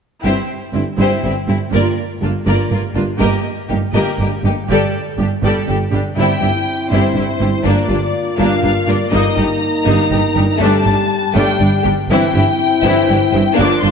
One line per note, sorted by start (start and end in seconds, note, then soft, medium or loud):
0.24 0.32 G1 soft
0.24 0.32 G2 soft
0.24 0.47 C4 soft
0.24 0.47 E4 soft
0.24 0.47 G4 soft
0.24 0.47 C5 soft
0.73 0.82 G1 soft
0.73 0.81 G2 soft
0.73 0.81 C4 soft
0.73 0.84 C4 soft
0.73 0.82 E4 soft
0.73 0.84 E4 soft
0.98 1.06 G1 soft
0.98 1.06 G2 soft
0.98 1.21 C4 soft
0.98 1.21 E4 soft
0.98 1.22 G4 soft
0.98 1.22 C5 soft
1.23 1.32 G1 soft
1.23 1.31 G2 soft
1.23 1.31 C4 soft
1.23 1.32 E4 soft
1.23 1.33 E4 soft
1.23 1.34 G4 soft
1.47 1.56 G1 soft
1.47 1.55 G2 soft
1.47 1.56 C4 soft
1.47 1.57 C4 soft
1.47 1.56 E4 soft
1.47 1.57 E4 soft
1.71 1.81 G1 soft
1.71 1.79 G2 soft
1.71 1.95 A#3 soft
1.71 1.96 F4 soft
1.71 1.96 A#4 soft
1.71 1.96 D5 soft
2.21 2.30 G1 soft
2.21 2.29 G2 soft
2.21 2.32 A#3 soft
2.21 2.31 D4 soft
2.21 2.31 F4 soft
2.46 2.55 G1 soft
2.46 2.54 G2 soft
2.46 2.70 A#3 soft
2.46 2.70 F4 soft
2.46 2.70 A#4 soft
2.46 2.70 D5 soft
2.71 2.79 G1 soft
2.71 2.79 G2 soft
2.71 2.81 A#3 soft
2.71 2.80 F4 soft
2.71 2.81 F4 soft
2.71 2.80 A#4 soft
2.95 3.04 G1 soft
2.95 3.03 G2 soft
2.95 3.04 A#3 soft
2.95 3.03 D4 soft
2.95 3.03 F4 soft
2.95 3.04 F4 soft
3.19 3.28 G1 soft
3.19 3.28 G2 soft
3.19 3.43 A#3 soft
3.19 3.43 G4 soft
3.19 3.43 A#4 soft
3.19 3.43 D#5 soft
3.69 3.78 G1 soft
3.69 3.78 G2 soft
3.69 3.77 A#3 soft
3.69 3.78 D#4 soft
3.69 3.77 G4 soft
3.93 4.01 G1 soft
3.93 4.03 G2 soft
3.93 4.18 A#3 soft
3.93 4.18 G4 soft
3.93 4.17 A#4 soft
3.93 4.17 D#5 soft
4.18 4.26 G1 soft
4.18 4.28 G2 soft
4.18 4.28 A#3 soft
4.18 4.28 G4 soft
4.18 4.29 G4 soft
4.18 4.29 A#4 soft
4.44 4.52 G1 soft
4.44 4.52 G2 soft
4.44 4.53 A#3 soft
4.44 4.53 D#4 soft
4.44 4.53 G4 soft
4.44 4.54 G4 soft
4.68 4.78 G1 soft
4.68 4.76 G2 soft
4.68 4.92 G3 soft
4.68 4.92 G4 medium
4.68 4.93 A4 soft
4.68 4.93 D5 soft
5.18 5.26 G1 soft
5.18 5.27 G2 soft
5.18 5.26 G3 soft
5.18 5.26 G4 soft
5.18 5.29 G4 soft
5.22 5.30 D4 soft
5.43 5.51 G1 soft
5.43 5.51 G2 soft
5.43 5.66 G3 soft
5.43 5.66 G4 soft
5.43 5.67 A4 soft
5.43 5.67 D5 soft
5.67 5.78 G1 soft
5.67 5.75 G2 soft
5.67 5.75 G3 soft
5.67 5.75 G4 soft
5.67 5.77 G4 soft
5.67 5.77 A4 soft
5.92 6.01 G1 soft
5.92 6.00 G2 soft
5.92 6.01 G3 soft
5.92 6.02 D4 soft
5.92 6.00 G4 soft
5.92 6.02 G4 soft
6.16 6.26 G1 soft
6.16 6.24 G2 soft
6.16 6.39 G3 soft
6.16 7.61 C4 soft
6.16 6.41 C4 soft
6.16 6.39 E4 soft
6.16 7.61 E4 soft
6.16 6.40 E4 soft
6.16 6.87 G5 medium
6.41 6.51 G1 soft
6.41 6.49 G2 soft
6.41 6.49 G3 soft
6.41 6.49 E4 soft
6.41 6.50 E4 soft
6.41 6.50 G4 soft
6.91 7.00 G1 soft
6.91 6.99 G2 soft
6.91 7.14 G3 soft
6.91 7.15 C4 soft
6.91 7.14 E4 soft
6.91 7.15 E4 soft
6.91 7.65 C5 soft
7.14 7.24 G1 soft
7.14 7.22 G2 soft
7.14 7.25 G3 soft
7.14 7.24 E4 soft
7.14 7.25 E4 soft
7.14 7.24 G4 soft
7.40 7.49 G1 soft
7.40 7.48 G2 soft
7.40 7.49 G3 soft
7.40 7.49 E4 soft
7.40 7.49 G4 soft
7.40 7.49 C5 soft
7.64 7.73 G1 soft
7.64 7.72 G2 soft
7.64 10.57 A#3 soft
7.64 7.87 A#3 soft
7.64 7.88 A#3 soft
7.64 7.88 D4 soft
7.64 9.09 F4 soft
7.64 8.39 D5 soft
7.88 7.97 G1 soft
7.88 7.96 G2 soft
7.88 7.97 D4 soft
7.88 8.00 D4 soft
7.88 7.98 F4 soft
7.92 8.00 A#3 soft
8.38 8.48 G1 soft
8.38 8.46 G2 soft
8.38 8.62 A#3 soft
8.38 8.61 D4 soft
8.38 8.62 D4 soft
8.38 8.87 F5 soft
8.63 8.72 G1 soft
8.63 8.71 G2 soft
8.63 8.72 A#3 soft
8.63 8.71 D4 soft
8.63 8.72 D4 soft
8.63 8.72 F4 soft
8.87 8.97 G1 soft
8.87 8.95 G2 soft
8.87 8.95 A#3 soft
8.87 8.95 D4 soft
8.87 8.96 F4 soft
8.87 8.96 A#4 soft
8.87 9.13 D5 soft
9.12 9.22 G1 soft
9.12 9.20 G2 soft
9.12 9.35 G3 soft
9.12 9.36 A#3 soft
9.12 9.35 D#4 soft
9.12 10.57 D#4 soft
9.12 9.37 D#5 soft
9.35 9.45 G1 soft
9.35 9.46 G2 soft
9.35 9.46 G3 soft
9.35 9.44 D#4 soft
9.35 9.46 D#4 soft
9.35 9.43 G4 soft
9.35 10.61 A#5 medium
9.84 9.95 G1 soft
9.84 9.94 G2 soft
9.84 10.10 G3 soft
9.84 10.09 A#3 soft
9.84 10.09 D#4 soft
9.84 10.10 D#4 soft
10.11 10.19 G1 soft
10.11 10.20 G2 soft
10.11 10.20 G3 soft
10.11 10.20 D#4 soft
10.11 10.20 G4 soft
10.34 10.43 G1 soft
10.34 10.46 G2 soft
10.34 10.45 G3 soft
10.34 10.45 D#4 soft
10.34 10.43 G4 soft
10.34 10.42 A#4 soft
10.57 10.68 G1 soft
10.57 11.92 G3 soft
10.57 10.82 A3 medium
10.57 11.92 G4 soft
10.62 10.70 G2 soft
10.62 10.85 G3 soft
10.62 10.85 D4 medium
10.62 11.34 A5 medium
10.82 10.94 G2 soft
10.82 10.90 D4 soft
10.86 10.94 G1 soft
10.86 10.95 G3 soft
10.86 10.95 D4 soft
11.34 11.43 G1 medium
11.34 11.44 G2 medium
11.34 11.58 G3 medium
11.34 11.58 A3 medium
11.34 11.58 D4 soft
11.34 11.84 G5 medium
11.59 11.68 G1 soft
11.59 11.68 G2 soft
11.59 11.69 G3 soft
11.59 11.67 D4 soft
11.59 11.69 D4 soft
11.83 11.93 G1 soft
11.83 11.94 G2 soft
11.83 11.93 G3 soft
11.83 11.92 D4 soft
11.83 11.91 G4 soft
12.08 12.16 G1 medium
12.08 12.18 G2 medium
12.08 12.33 E3 medium
12.08 13.53 C4 medium
12.08 12.33 C4 medium
12.08 13.54 E4 soft
12.08 12.33 E4 medium
12.08 12.33 E4 soft
12.08 13.54 G5 medium
12.33 12.41 G1 soft
12.33 12.44 G2 soft
12.33 12.43 E3 soft
12.33 12.43 E4 soft
12.33 12.43 G4 soft
12.83 12.91 G1 medium
12.83 12.93 G2 medium
12.83 13.08 E3 medium
12.83 13.06 C4 medium
12.83 13.06 E4 medium
12.83 13.08 E4 medium
13.08 13.17 G1 soft
13.08 13.17 G2 soft
13.08 13.19 E3 medium
13.08 13.16 E4 soft
13.08 13.19 E4 soft
13.08 13.16 G4 soft
13.32 13.41 G1 soft
13.32 13.42 G2 soft
13.32 13.43 E3 soft
13.32 13.42 E4 soft
13.32 13.40 G4 soft
13.32 13.40 C5 soft
13.54 13.79 A#3 medium
13.54 13.91 A#3 medium
13.54 13.79 D4 medium
13.54 13.91 D4 medium
13.58 13.67 G1 medium
13.58 13.66 G2 medium
13.58 13.82 F3 medium
13.58 13.82 D4 medium
13.58 13.82 D6 medium
13.82 13.91 G1 soft
13.82 13.91 G2 soft
13.82 13.91 F3 soft
13.82 13.90 D4 soft
13.82 13.91 D4 soft
13.82 13.90 F4 soft
13.82 13.91 C6 medium